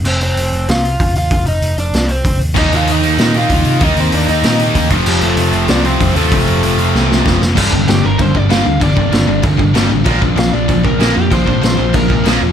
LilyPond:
<<
  \new Staff \with { instrumentName = "Overdriven electric guitar" } { \time 4/4 \key g \minor \tempo 4 = 192 <c' c''>8 <c' c''>4. <f' f''>4. <f' f''>8~ | <f' f''>8 <ees' ees''>4 <d' d''>4 <c' c''>4 r8 | <ees' ees''>8 <f' f''>8 <ees' ees''>4 <ees' ees''>8 <f' f''>4. | <ees' ees''>8 <c' c''>8 <d' d''>8 <ees' ees''>2 r8 |
<g g'>8 <a a'>4. <d' d''>8 <c' c''>4 <a a'>8~ | <a a'>2. r4 | r4 g'8 bes'8 c''8 d''8 f''4 | d''2 r2 |
r4 f''8 d''4 bes'4 g'8 | c''4 c''4 bes'4 r4 | }
  \new Staff \with { instrumentName = "Distorted electric guitar" } { \time 4/4 \key g \minor r1 | r1 | <ees bes ees' g'>2 <ees bes ees' g'>2 | <ees bes ees' g'>2 <ees bes ees' g'>4. <f a c' f'>8~ |
<f a c' f'>4. <f a c' f'>2 <f a c' f'>8~ | <f a c' f'>4. <f a c' f'>2 r8 | <g, d g bes d'>1 | <g, d g bes d'>1 |
<bes, f bes d'>1 | <bes, f bes d'>1 | }
  \new Staff \with { instrumentName = "Distorted electric guitar" } { \clef bass \time 4/4 \key g \minor r1 | r1 | <ees bes ees'>1 | <ees bes ees'>2.~ <ees bes ees'>8 <f, c f>8~ |
<f, c f>2.~ <f, c f>8 <f, c f>8~ | <f, c f>2.~ <f, c f>8 r8 | <g, d g>8 <g, d>8 <g, d>8 <g, d>8 <g, d>8 <g, d>8 <g, d g>8 <g, d>8 | <g, d>8 <g, d>8 <g, d>8 <g, d>8 <g, d>8 <g, d>8 <g, d g>8 <g, d>8 |
<bes, f bes>8 <bes, f>8 <bes, f>8 <bes, f>8 <bes, f>8 <bes, f>8 <bes, f bes>8 <bes, f>8 | <bes, f>8 <bes, f>8 <bes, f>8 <bes, f>8 <bes, f>8 <bes, f>8 <bes, f bes>8 <bes, f>8 | }
  \new Staff \with { instrumentName = "Distorted electric guitar" } { \clef bass \time 4/4 \key g \minor r1 | r1 | <ees bes ees'>4. <ees bes ees'>2~ <ees bes ees'>8 | <ees bes ees'>4. <ees bes ees'>2 <f, c f>8~ |
<f, c f>4 <f, c f>2~ <f, c f>8 <f, c f>8~ | <f, c f>4 <f, c f>2~ <f, c f>8 r8 | <g, d g>8 <g, d>8 <g, d>8 <g, d>8 <g, d>8 <g, d>8 <g, d g>8 <g, d>8 | <g, d>8 <g, d>8 <g, d>8 <g, d>8 <g, d>8 <g, d>8 <g, d g>8 <g, d>8 |
<bes, f bes>8 <bes, f>8 <bes, f>8 <bes, f>8 <bes, f>8 <bes, f>8 <bes, f bes>8 <bes, f>8 | <bes, f>8 <bes, f>8 <bes, f>8 <bes, f>8 <bes, f>8 <bes, f>8 <bes, f bes>8 <bes, f>8 | }
  \new Staff \with { instrumentName = "Picked electric bass" } { \clef bass \time 4/4 \key g \minor f,,8 f,,8 f,,8 f,,8 c,4 f,,8 ees,8 | f,,8 f,,8 f,,8 f,,8 c,4 f,,8 ees,8 | ees,8 ees,8 ees,8 ees,8 bes,4 ees,8 c8 | ees,8 ees,8 ees,8 ees,8 bes,4 ees,8 f,,8 |
f,,8 f,,8 f,,8 f,,8 c,4 f,,8 ees,8 | f,,8 f,,8 f,,8 f,,8 c,4 f,,8 f,,8 | g,,8 g,,8 g,,8 g,,8 g,,8 g,,8 g,,8 d,8 | g,,8 g,,8 g,,8 g,,8 g,,8 g,,8 g,,8 a,,8 |
bes,,8 bes,,8 bes,,8 bes,,8 bes,,8 bes,,8 bes,,8 f,8 | bes,,8 bes,,8 bes,,8 bes,,8 bes,,8 bes,,8 bes,,8 e,,8 | }
  \new DrumStaff \with { instrumentName = "Drums" } \drummode { \time 4/4 cymc8 hho8 hho8 hho8 <hho sn>8 hho8 <hho bd>8 hho8 | <hho bd>8 hho8 hho8 hho8 <hho sn>8 hho8 <hho bd>8 hho8 | <cymc bd>8 hho8 hho8 hho8 <hho sn>8 hho8 <hho bd>8 hho8 | <hho bd>8 hho8 hho8 hho8 <hho sn>8 hho8 <hho bd>8 <hho bd>8 |
cymc8 hho8 hho8 hho8 <hho sn>8 hho8 <hho bd>8 hho8 | <hho bd>8 hho8 hho8 hho8 sn8 sn8 <bd sn>8 sn8 | <cymc bd>8 bd8 <cymc sn>4 <cymc bd>8 bd8 <cymc sn>4 | <cymc bd>8 bd8 <cymc sn>4 <cymc bd>8 bd8 <cymc sn>4 |
<cymc bd>8 bd8 <cymc sn>4 <cymc bd>8 bd8 <cymc sn>4 | <cymc bd>8 bd8 <cymc sn>4 <cymc bd>8 bd8 <cymc sn>4 | }
>>